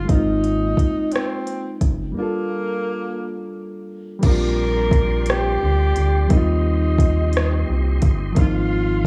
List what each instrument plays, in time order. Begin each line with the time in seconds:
Already playing: reed electric piano G3 A#3 C4 D#4 F4, tenor saxophone F4
0.05 reed electric piano G#3 A#3
0.09 analog synth bass G#1, reed electric piano C4 D#4, tenor saxophone D#4, kick, closed hi-hat
0.15 reed electric piano F4
0.44 closed hi-hat
0.77 analog synth bass F#1, kick, closed hi-hat
1.12 tenor saxophone C4, cross-stick, closed hi-hat
1.47 closed hi-hat
1.81 analog synth bass F#1, kick, closed hi-hat
2.12 reed electric piano G3 A#3
2.17 tenor saxophone A#3, reed electric piano D4 F4
2.23 reed electric piano A4
4.19 reed electric piano G3 A#3, tonewheel organ G4 D5 C6, kick, closed hi-hat, crash
4.24 analog synth bass A#1, reed electric piano C4 D4, tenor saxophone A#4
4.30 reed electric piano F4
4.91 kick, closed hi-hat
5.26 cross-stick, closed hi-hat
5.30 tenor saxophone G4
5.63 analog synth bass D2
5.96 analog synth bass D2, closed hi-hat
6.26 reed electric piano F#3 A#3, closed hi-hat
6.30 analog synth bass D#2, reed electric piano G3 C4 D#4, tenor saxophone D#4, tonewheel organ D#5, kick
6.37 reed electric piano F4
6.98 kick, closed hi-hat
7.33 cross-stick, closed hi-hat
7.70 analog synth bass C2
8.02 analog synth bass G1, kick, closed hi-hat
8.33 reed electric piano F3 A#3, closed hi-hat
8.37 analog synth bass G#1, reed electric piano C4 D#4, tonewheel organ F4 F5, kick
8.41 tenor saxophone F4, reed electric piano F4